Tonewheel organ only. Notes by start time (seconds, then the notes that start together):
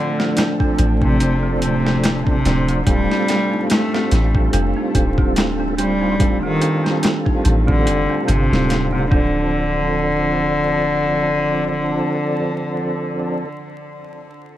Already playing: F3 C4 D4 A4
2.45 F3 C4 D4 C5
2.86 G3 C4 F4 A4
5.78 G3 C4 F4 C5
6.19 G3 C4 F4 A4
9.10 F3 C4 D4
9.14 A4